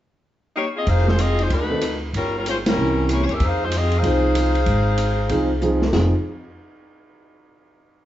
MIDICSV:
0, 0, Header, 1, 5, 480
1, 0, Start_track
1, 0, Key_signature, -4, "minor"
1, 0, Tempo, 316623
1, 1311, Time_signature, 4, 2, 24, 8
1, 12204, End_track
2, 0, Start_track
2, 0, Title_t, "Saxophone section"
2, 0, Program_c, 0, 65
2, 848, Note_on_c, 0, 63, 70
2, 851, Note_on_c, 0, 67, 77
2, 858, Note_on_c, 0, 73, 85
2, 859, Note_on_c, 0, 58, 76
2, 982, Note_off_c, 0, 63, 0
2, 984, Note_off_c, 0, 67, 0
2, 990, Note_off_c, 0, 73, 0
2, 991, Note_off_c, 0, 58, 0
2, 1145, Note_on_c, 0, 65, 68
2, 1156, Note_on_c, 0, 68, 69
2, 1157, Note_on_c, 0, 60, 61
2, 1159, Note_on_c, 0, 75, 82
2, 1304, Note_off_c, 0, 65, 0
2, 1310, Note_off_c, 0, 60, 0
2, 1310, Note_off_c, 0, 68, 0
2, 1311, Note_off_c, 0, 75, 0
2, 1322, Note_on_c, 0, 72, 85
2, 1328, Note_on_c, 0, 68, 78
2, 1330, Note_on_c, 0, 63, 84
2, 1333, Note_on_c, 0, 77, 91
2, 1624, Note_off_c, 0, 72, 0
2, 1627, Note_off_c, 0, 68, 0
2, 1628, Note_off_c, 0, 63, 0
2, 1629, Note_off_c, 0, 77, 0
2, 1648, Note_on_c, 0, 72, 67
2, 1650, Note_on_c, 0, 65, 63
2, 1654, Note_on_c, 0, 63, 67
2, 1658, Note_on_c, 0, 56, 65
2, 1786, Note_off_c, 0, 65, 0
2, 1804, Note_on_c, 0, 65, 77
2, 1808, Note_on_c, 0, 68, 75
2, 1809, Note_off_c, 0, 72, 0
2, 1812, Note_off_c, 0, 63, 0
2, 1812, Note_on_c, 0, 75, 82
2, 1813, Note_on_c, 0, 60, 75
2, 1814, Note_off_c, 0, 56, 0
2, 2106, Note_off_c, 0, 65, 0
2, 2108, Note_off_c, 0, 68, 0
2, 2110, Note_off_c, 0, 75, 0
2, 2111, Note_off_c, 0, 60, 0
2, 2130, Note_on_c, 0, 65, 69
2, 2131, Note_on_c, 0, 56, 66
2, 2132, Note_on_c, 0, 72, 80
2, 2136, Note_on_c, 0, 63, 72
2, 2286, Note_off_c, 0, 63, 0
2, 2291, Note_off_c, 0, 65, 0
2, 2292, Note_off_c, 0, 56, 0
2, 2292, Note_off_c, 0, 72, 0
2, 2305, Note_on_c, 0, 57, 68
2, 2305, Note_on_c, 0, 63, 63
2, 2307, Note_on_c, 0, 66, 71
2, 2314, Note_on_c, 0, 71, 85
2, 3025, Note_off_c, 0, 57, 0
2, 3025, Note_off_c, 0, 63, 0
2, 3026, Note_off_c, 0, 66, 0
2, 3030, Note_off_c, 0, 71, 0
2, 3267, Note_on_c, 0, 55, 71
2, 3271, Note_on_c, 0, 61, 71
2, 3274, Note_on_c, 0, 70, 79
2, 3280, Note_on_c, 0, 65, 68
2, 3540, Note_off_c, 0, 55, 0
2, 3541, Note_off_c, 0, 61, 0
2, 3543, Note_off_c, 0, 70, 0
2, 3547, Note_off_c, 0, 65, 0
2, 3588, Note_on_c, 0, 70, 66
2, 3589, Note_on_c, 0, 65, 54
2, 3592, Note_on_c, 0, 61, 64
2, 3597, Note_on_c, 0, 55, 61
2, 3732, Note_off_c, 0, 65, 0
2, 3732, Note_off_c, 0, 70, 0
2, 3734, Note_off_c, 0, 61, 0
2, 3736, Note_off_c, 0, 55, 0
2, 3757, Note_on_c, 0, 56, 65
2, 3760, Note_on_c, 0, 65, 70
2, 3761, Note_on_c, 0, 72, 75
2, 3766, Note_on_c, 0, 61, 68
2, 3887, Note_off_c, 0, 56, 0
2, 3889, Note_off_c, 0, 65, 0
2, 3890, Note_off_c, 0, 72, 0
2, 3894, Note_off_c, 0, 61, 0
2, 4057, Note_on_c, 0, 61, 74
2, 4058, Note_on_c, 0, 70, 77
2, 4061, Note_on_c, 0, 55, 68
2, 4061, Note_on_c, 0, 64, 72
2, 4653, Note_off_c, 0, 61, 0
2, 4653, Note_off_c, 0, 70, 0
2, 4655, Note_off_c, 0, 55, 0
2, 4655, Note_off_c, 0, 64, 0
2, 4714, Note_on_c, 0, 58, 69
2, 4718, Note_on_c, 0, 64, 65
2, 4721, Note_on_c, 0, 73, 78
2, 4729, Note_on_c, 0, 67, 68
2, 4909, Note_off_c, 0, 73, 0
2, 4927, Note_off_c, 0, 58, 0
2, 4927, Note_on_c, 0, 73, 62
2, 4929, Note_off_c, 0, 64, 0
2, 4935, Note_off_c, 0, 67, 0
2, 4996, Note_off_c, 0, 73, 0
2, 5037, Note_on_c, 0, 67, 64
2, 5039, Note_on_c, 0, 61, 70
2, 5041, Note_on_c, 0, 70, 67
2, 5047, Note_on_c, 0, 76, 79
2, 5187, Note_off_c, 0, 67, 0
2, 5188, Note_off_c, 0, 61, 0
2, 5189, Note_off_c, 0, 70, 0
2, 5192, Note_off_c, 0, 76, 0
2, 5209, Note_on_c, 0, 63, 78
2, 5215, Note_on_c, 0, 72, 83
2, 5216, Note_on_c, 0, 77, 89
2, 5219, Note_on_c, 0, 68, 73
2, 5491, Note_off_c, 0, 63, 0
2, 5494, Note_off_c, 0, 72, 0
2, 5494, Note_off_c, 0, 77, 0
2, 5496, Note_off_c, 0, 68, 0
2, 5518, Note_on_c, 0, 72, 75
2, 5529, Note_on_c, 0, 56, 57
2, 5529, Note_on_c, 0, 65, 54
2, 5532, Note_on_c, 0, 63, 59
2, 5667, Note_off_c, 0, 72, 0
2, 5673, Note_off_c, 0, 56, 0
2, 5673, Note_off_c, 0, 65, 0
2, 5674, Note_off_c, 0, 63, 0
2, 5712, Note_on_c, 0, 75, 81
2, 5718, Note_on_c, 0, 65, 72
2, 5718, Note_on_c, 0, 68, 74
2, 5726, Note_on_c, 0, 60, 72
2, 5982, Note_off_c, 0, 75, 0
2, 5985, Note_off_c, 0, 65, 0
2, 5985, Note_off_c, 0, 68, 0
2, 5989, Note_off_c, 0, 60, 0
2, 6023, Note_on_c, 0, 77, 85
2, 6029, Note_on_c, 0, 63, 70
2, 6030, Note_on_c, 0, 72, 80
2, 6036, Note_on_c, 0, 68, 72
2, 8551, Note_off_c, 0, 77, 0
2, 8554, Note_off_c, 0, 63, 0
2, 8555, Note_off_c, 0, 72, 0
2, 8558, Note_off_c, 0, 68, 0
2, 12204, End_track
3, 0, Start_track
3, 0, Title_t, "Grand piano"
3, 0, Program_c, 1, 0
3, 1621, Note_on_c, 1, 51, 45
3, 1631, Note_on_c, 1, 56, 46
3, 1632, Note_on_c, 1, 60, 40
3, 1649, Note_on_c, 1, 65, 56
3, 1778, Note_off_c, 1, 51, 0
3, 1783, Note_off_c, 1, 56, 0
3, 1783, Note_off_c, 1, 60, 0
3, 1792, Note_off_c, 1, 65, 0
3, 2571, Note_on_c, 1, 51, 56
3, 2579, Note_on_c, 1, 60, 45
3, 2584, Note_on_c, 1, 62, 47
3, 2599, Note_on_c, 1, 69, 61
3, 2735, Note_off_c, 1, 51, 0
3, 2739, Note_off_c, 1, 60, 0
3, 2742, Note_off_c, 1, 62, 0
3, 2749, Note_off_c, 1, 69, 0
3, 4179, Note_on_c, 1, 52, 49
3, 4190, Note_on_c, 1, 48, 42
3, 4198, Note_on_c, 1, 61, 44
3, 4202, Note_on_c, 1, 70, 51
3, 4915, Note_off_c, 1, 52, 0
3, 4921, Note_off_c, 1, 48, 0
3, 4925, Note_off_c, 1, 61, 0
3, 4927, Note_off_c, 1, 70, 0
3, 6108, Note_on_c, 1, 53, 55
3, 6112, Note_on_c, 1, 60, 48
3, 6123, Note_on_c, 1, 63, 49
3, 6137, Note_on_c, 1, 68, 54
3, 6837, Note_off_c, 1, 53, 0
3, 6839, Note_off_c, 1, 60, 0
3, 6844, Note_off_c, 1, 63, 0
3, 6851, Note_off_c, 1, 68, 0
3, 8032, Note_on_c, 1, 53, 48
3, 8042, Note_on_c, 1, 60, 52
3, 8043, Note_on_c, 1, 63, 56
3, 8051, Note_on_c, 1, 68, 60
3, 8308, Note_off_c, 1, 53, 0
3, 8313, Note_off_c, 1, 60, 0
3, 8313, Note_off_c, 1, 63, 0
3, 8317, Note_off_c, 1, 68, 0
3, 8523, Note_on_c, 1, 53, 57
3, 8527, Note_on_c, 1, 60, 54
3, 8539, Note_on_c, 1, 63, 54
3, 8543, Note_on_c, 1, 68, 58
3, 8792, Note_off_c, 1, 53, 0
3, 8794, Note_off_c, 1, 60, 0
3, 8800, Note_off_c, 1, 63, 0
3, 8802, Note_off_c, 1, 68, 0
3, 9004, Note_on_c, 1, 60, 46
3, 9007, Note_on_c, 1, 53, 57
3, 9012, Note_on_c, 1, 63, 50
3, 9012, Note_on_c, 1, 68, 53
3, 9272, Note_off_c, 1, 60, 0
3, 9273, Note_off_c, 1, 53, 0
3, 9276, Note_off_c, 1, 63, 0
3, 9276, Note_off_c, 1, 68, 0
3, 12204, End_track
4, 0, Start_track
4, 0, Title_t, "Upright bass"
4, 0, Program_c, 2, 32
4, 1318, Note_on_c, 2, 29, 73
4, 2232, Note_off_c, 2, 29, 0
4, 2273, Note_on_c, 2, 38, 69
4, 3190, Note_off_c, 2, 38, 0
4, 3235, Note_on_c, 2, 31, 76
4, 4151, Note_off_c, 2, 31, 0
4, 4186, Note_on_c, 2, 36, 80
4, 4924, Note_off_c, 2, 36, 0
4, 4979, Note_on_c, 2, 40, 59
4, 5146, Note_off_c, 2, 40, 0
4, 5155, Note_on_c, 2, 41, 83
4, 6069, Note_off_c, 2, 41, 0
4, 6108, Note_on_c, 2, 36, 76
4, 7024, Note_off_c, 2, 36, 0
4, 7065, Note_on_c, 2, 32, 79
4, 7980, Note_off_c, 2, 32, 0
4, 8025, Note_on_c, 2, 36, 66
4, 8939, Note_off_c, 2, 36, 0
4, 8990, Note_on_c, 2, 29, 91
4, 9274, Note_off_c, 2, 29, 0
4, 12204, End_track
5, 0, Start_track
5, 0, Title_t, "Drums"
5, 1314, Note_on_c, 9, 51, 52
5, 1318, Note_on_c, 9, 36, 28
5, 1466, Note_off_c, 9, 51, 0
5, 1469, Note_off_c, 9, 36, 0
5, 1485, Note_on_c, 9, 38, 23
5, 1637, Note_off_c, 9, 38, 0
5, 1642, Note_on_c, 9, 38, 39
5, 1793, Note_off_c, 9, 38, 0
5, 1797, Note_on_c, 9, 44, 57
5, 1797, Note_on_c, 9, 51, 62
5, 1949, Note_off_c, 9, 44, 0
5, 1949, Note_off_c, 9, 51, 0
5, 2102, Note_on_c, 9, 51, 44
5, 2254, Note_off_c, 9, 51, 0
5, 2278, Note_on_c, 9, 51, 55
5, 2280, Note_on_c, 9, 36, 27
5, 2430, Note_off_c, 9, 51, 0
5, 2432, Note_off_c, 9, 36, 0
5, 2751, Note_on_c, 9, 44, 54
5, 2751, Note_on_c, 9, 51, 63
5, 2752, Note_on_c, 9, 37, 58
5, 2903, Note_off_c, 9, 44, 0
5, 2903, Note_off_c, 9, 51, 0
5, 2904, Note_off_c, 9, 37, 0
5, 3245, Note_on_c, 9, 36, 30
5, 3247, Note_on_c, 9, 51, 53
5, 3397, Note_off_c, 9, 36, 0
5, 3398, Note_off_c, 9, 51, 0
5, 3729, Note_on_c, 9, 44, 61
5, 3729, Note_on_c, 9, 51, 59
5, 3881, Note_off_c, 9, 44, 0
5, 3881, Note_off_c, 9, 51, 0
5, 4036, Note_on_c, 9, 51, 63
5, 4037, Note_on_c, 9, 38, 76
5, 4187, Note_off_c, 9, 51, 0
5, 4189, Note_off_c, 9, 38, 0
5, 4684, Note_on_c, 9, 44, 58
5, 4684, Note_on_c, 9, 51, 60
5, 4685, Note_on_c, 9, 37, 55
5, 4836, Note_off_c, 9, 44, 0
5, 4836, Note_off_c, 9, 51, 0
5, 4837, Note_off_c, 9, 37, 0
5, 4988, Note_on_c, 9, 51, 37
5, 5139, Note_off_c, 9, 51, 0
5, 5155, Note_on_c, 9, 51, 49
5, 5158, Note_on_c, 9, 36, 30
5, 5307, Note_off_c, 9, 51, 0
5, 5310, Note_off_c, 9, 36, 0
5, 5632, Note_on_c, 9, 44, 59
5, 5632, Note_on_c, 9, 51, 74
5, 5784, Note_off_c, 9, 44, 0
5, 5784, Note_off_c, 9, 51, 0
5, 5936, Note_on_c, 9, 51, 43
5, 6088, Note_off_c, 9, 51, 0
5, 6117, Note_on_c, 9, 36, 32
5, 6118, Note_on_c, 9, 51, 61
5, 6268, Note_off_c, 9, 36, 0
5, 6270, Note_off_c, 9, 51, 0
5, 6596, Note_on_c, 9, 44, 48
5, 6596, Note_on_c, 9, 51, 67
5, 6598, Note_on_c, 9, 37, 59
5, 6748, Note_off_c, 9, 44, 0
5, 6748, Note_off_c, 9, 51, 0
5, 6750, Note_off_c, 9, 37, 0
5, 6899, Note_on_c, 9, 51, 42
5, 7051, Note_off_c, 9, 51, 0
5, 7067, Note_on_c, 9, 51, 48
5, 7071, Note_on_c, 9, 36, 33
5, 7219, Note_off_c, 9, 51, 0
5, 7223, Note_off_c, 9, 36, 0
5, 7544, Note_on_c, 9, 44, 51
5, 7544, Note_on_c, 9, 51, 65
5, 7695, Note_off_c, 9, 44, 0
5, 7695, Note_off_c, 9, 51, 0
5, 8026, Note_on_c, 9, 51, 52
5, 8034, Note_on_c, 9, 36, 28
5, 8177, Note_off_c, 9, 51, 0
5, 8185, Note_off_c, 9, 36, 0
5, 8510, Note_on_c, 9, 44, 53
5, 8662, Note_off_c, 9, 44, 0
5, 8819, Note_on_c, 9, 38, 52
5, 8970, Note_off_c, 9, 38, 0
5, 8989, Note_on_c, 9, 38, 84
5, 8989, Note_on_c, 9, 55, 66
5, 9140, Note_off_c, 9, 38, 0
5, 9140, Note_off_c, 9, 55, 0
5, 12204, End_track
0, 0, End_of_file